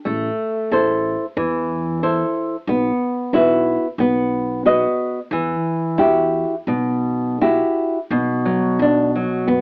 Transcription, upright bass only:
0.06 A1
0.72 A1
1.37 E2
2.68 B1
3.33 B1
3.98 B1
5.31 E2
5.98 E2
6.67 B1
8.11 B1
8.79 B1
9.48 F#2

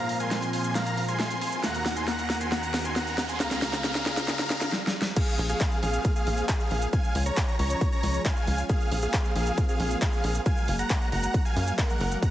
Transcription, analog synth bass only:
5.39 A#1
5.83 A#1
6.27 A#1
6.71 A#1
7.15 C#2
7.59 C#2
8.03 C#2
8.47 C#2
8.91 A#1
9.36 A#1
9.80 A#1
10.24 A#1
10.68 F#1
11.12 F#1
11.56 F#2
12.00 F#1

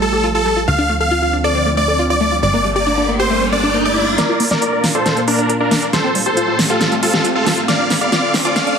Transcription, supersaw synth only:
0.02 A4
0.35 A4
0.68 F5
1.01 F5
1.44 D5
1.77 D5
2.10 D5
2.43 D5
2.76 D5
3.20 C5
3.52 D5
3.85 D5
4.18 A#4 D5
4.51 A#4 D5
4.95 A4 C5
5.28 D4 A#4
5.60 D4 A#4
5.93 A4 C5
6.26 A4 C5
6.70 F4 A4
7.03 F4 A4
7.35 F4 A4
7.68 D5 F5
8.01 D5 F5
8.45 F4 D5
8.56 D5 F5

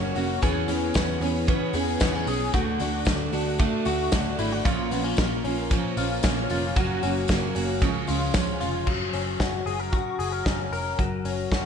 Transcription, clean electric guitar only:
Already playing: F#3 A#3 C#4 F#4
0.16 F#4
0.42 E3 G#4
0.69 C#4
0.96 B3
1.22 C#4
1.48 B3
1.75 G#4
2.01 B3
2.15 C#4
2.28 G#4
2.54 D3 F#4
2.81 D4
3.07 A3
3.33 D4
3.59 A3
3.86 F#4
4.13 D4
4.39 E4
4.52 F#4
4.65 A#2 F4
4.91 B3
5.04 C#4
5.18 A#3
5.44 C#4
5.71 F3
5.97 F4
6.23 C#4
6.51 F4
6.76 F#3 F#4
7.03 C#4
7.29 A#3
7.55 C#4
7.82 C#3
8.08 F4
8.34 C#4
8.60 F4
8.87 F#3
9.14 C#4
9.40 F#4
9.66 G#4
9.79 A#4
9.92 F#4
10.19 G#4
10.32 A#4
10.46 C#4
10.73 A#4
10.99 F#3
11.25 C#4
11.52 F#4

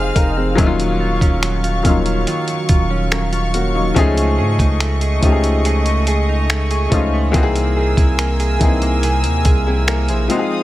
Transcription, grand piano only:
Already playing: F3 G#3 C4 D#4 G4 G#4 C5 D#5 G#5 C6
0.01 F5
0.16 A#4
0.30 D#5
0.37 C4 G#4
0.55 F#3 A#3 C#4 D#4
0.60 E4
0.66 F4
1.83 F#3 A#3 C#4 D#4
1.87 F4
3.12 C#4 A#4
3.54 A#3 F#4
3.75 F#3 D#4
3.94 F3 A3 C#4 D#4
3.99 G#4
5.21 F3 A3 C#4 D#4
5.25 G4
5.32 G#4
6.90 F3 A3 C#4 D#4
6.94 F4
7.32 E3 A#3 C4 D#4
7.36 F#4
7.43 G#4
8.59 E3 A#3 C4 D#4
8.63 G#4
9.67 C4 G#4
9.88 A#4
10.09 E4 C5
10.28 F3 G#3 C4 D#4
10.32 F#4
10.39 G#4

